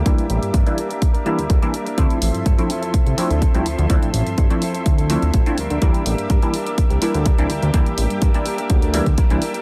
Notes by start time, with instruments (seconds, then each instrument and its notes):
Already playing: string machine G4 E5 D6
0.05 analog synth bass D2, analog polysynth E3 G3 A#3 D4 E4, clean electric guitar G3 A#3 D4 A#4, kick, closed hi-hat
0.18 analog synth bass A1, closed hi-hat
0.30 analog synth bass A1, closed hi-hat
0.42 analog synth bass G2, closed hi-hat
0.53 analog synth bass G2, clean electric guitar G3 A#3 D4 A#4, kick, closed hi-hat
0.66 analog polysynth E3 G3 A#3 D4 E4, closed hi-hat
0.77 clean electric guitar G3 A#3 D4 A#4, closed hi-hat
0.89 clean electric guitar A#3 D4 A#4, closed hi-hat
1.02 kick, closed hi-hat
1.14 clean electric guitar A#3 D4 A#4, closed hi-hat
1.25 analog polysynth E3 G3 A#3 D4 E4, clean electric guitar G3 A#3 D4 A#4, closed hi-hat
1.38 analog synth bass D2, closed hi-hat
1.49 analog synth bass D2, clean electric guitar G3 A#3 D4 A#4, kick, closed hi-hat
1.62 analog polysynth E3 G3 A#3 D4 E4, closed hi-hat
1.73 clean electric guitar G3 A#3 D4 A#4, closed hi-hat
1.86 clean electric guitar A#3 D4 A#4, closed hi-hat
1.97 analog synth bass D2, clean electric guitar F3 C4 E4 A4, analog polysynth F3 A3 C4 D4 E4, string machine F3 C6, kick, closed hi-hat
2.10 closed hi-hat
2.22 analog synth bass A1, open hi-hat
2.35 analog synth bass G2, closed hi-hat
2.45 analog synth bass G2, clean electric guitar F3 C4 E4 A4, kick, closed hi-hat
2.58 analog polysynth F3 A3 C4 D4 E4, closed hi-hat
2.69 clean electric guitar F3 C4 E4 A4, open hi-hat
2.82 clean electric guitar C4 E4 A4, closed hi-hat
2.94 analog synth bass C2, kick, closed hi-hat
3.06 analog synth bass C2, clean electric guitar C4 E4 A4, closed hi-hat
3.17 clean electric guitar F3 C4 E4 A4, analog polysynth F3 A3 C4 D4 E4, open hi-hat
3.31 analog synth bass D2, closed hi-hat
3.41 clean electric guitar F3 C4 E4 A4, kick, closed hi-hat
3.54 analog synth bass C2, analog polysynth F3 A3 C4 D4 E4, closed hi-hat
3.65 analog synth bass D2, clean electric guitar F3 C4 E4 A4, open hi-hat
3.78 analog synth bass D2, clean electric guitar C4 E4 A4, closed hi-hat
3.89 analog synth bass D2, analog polysynth F3 A3 C4 D4 E4, clean electric guitar F3 C4 E4 A4, kick, closed hi-hat
4.02 analog synth bass A1, closed hi-hat
4.14 analog synth bass A1, open hi-hat
4.26 analog synth bass G2, closed hi-hat
4.38 analog synth bass G2, clean electric guitar F3 C4 E4 A4, kick, closed hi-hat
4.50 analog polysynth F3 A3 C4 D4 E4, closed hi-hat
4.61 clean electric guitar F3 C4 E4 A4, open hi-hat
4.74 clean electric guitar C4 E4 A4, closed hi-hat
4.86 analog synth bass D2, kick, closed hi-hat
4.98 clean electric guitar C4 E4 A4, closed hi-hat
5.09 clean electric guitar F3 C4 E4 A4, analog polysynth F3 A3 C4 D4 E4, open hi-hat
5.22 analog synth bass D2, closed hi-hat
5.34 analog synth bass A1, clean electric guitar F3 C4 E4 A4, kick, closed hi-hat
5.46 analog polysynth F3 A3 C4 D4 E4, closed hi-hat
5.57 analog synth bass D2, clean electric guitar G3 A#3 D4 A#4, string machine G4 D6, open hi-hat
5.70 analog synth bass D2, clean electric guitar A#3 D4 A#4, closed hi-hat
5.82 analog synth bass D2, analog polysynth E3 G3 A#3 D4 E4, clean electric guitar G3 A#3 D4 A#4, kick, closed hi-hat
5.94 closed hi-hat
6.06 analog synth bass A1, open hi-hat
6.18 analog synth bass G2, closed hi-hat
6.29 analog synth bass G2, clean electric guitar G3 A#3 D4 A#4, kick, closed hi-hat
6.42 analog polysynth E3 G3 A#3 D4 E4, closed hi-hat
6.53 clean electric guitar G3 A#3 D4 A#4, open hi-hat
6.66 clean electric guitar A#3 D4 A#4, closed hi-hat
6.78 analog synth bass C2, kick, closed hi-hat
6.90 analog synth bass C2, clean electric guitar A#3 D4 A#4, closed hi-hat
7.01 analog polysynth E3 G3 A#3 D4 E4, clean electric guitar G3 A#3 D4 A#4, open hi-hat
7.14 analog synth bass D2, closed hi-hat
7.25 clean electric guitar G3 A#3 D4 A#4, kick, closed hi-hat
7.38 analog synth bass C2, analog polysynth E3 G3 A#3 D4 E4, closed hi-hat
7.49 analog synth bass D2, clean electric guitar G3 A#3 D4 A#4, open hi-hat
7.62 analog synth bass D2, clean electric guitar A#3 D4 A#4, closed hi-hat
7.73 analog synth bass D2, analog polysynth E3 G3 A#3 D4 E4, clean electric guitar G3 A#3 D4 A#4, kick, closed hi-hat
7.86 analog synth bass A1, closed hi-hat
7.98 analog synth bass A1, open hi-hat
8.10 analog synth bass G2, closed hi-hat
8.21 analog synth bass G2, clean electric guitar G3 A#3 D4 A#4, kick, closed hi-hat
8.34 analog polysynth E3 G3 A#3 D4 E4, closed hi-hat
8.45 clean electric guitar G3 A#3 D4 A#4, open hi-hat
8.58 clean electric guitar A#3 D4 A#4, closed hi-hat
8.70 analog synth bass D2, kick, closed hi-hat
8.82 clean electric guitar A#3 D4 A#4, closed hi-hat
8.93 analog polysynth E3 G3 A#3 D4 E4, clean electric guitar G3 A#3 D4 A#4, open hi-hat
9.06 analog synth bass D2, kick, closed hi-hat
9.17 clean electric guitar G3 A#3 D4 A#4, kick, closed hi-hat
9.30 analog synth bass C2, analog polysynth E3 G3 A#3 D4 E4, closed hi-hat
9.41 clean electric guitar G3 A#3 D4 A#4, open hi-hat
9.54 clean electric guitar A#3 D4 A#4, closed hi-hat